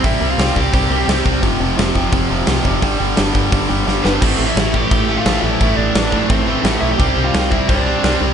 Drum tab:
CC |--------|--------|--------|x-x-x-x-|
HH |o-o-o-o-|o-o-o-o-|o-o-o---|--------|
SD |--o---o-|--o---o-|--o---oo|--o---o-|
BD |o--oo--o|o--oo--o|o--oo---|o--oo---|

CC |x-x-x-x-|x-x-x-x-|
HH |--------|--------|
SD |--o---o-|--o---o-|
BD |o--oo---|o--oo---|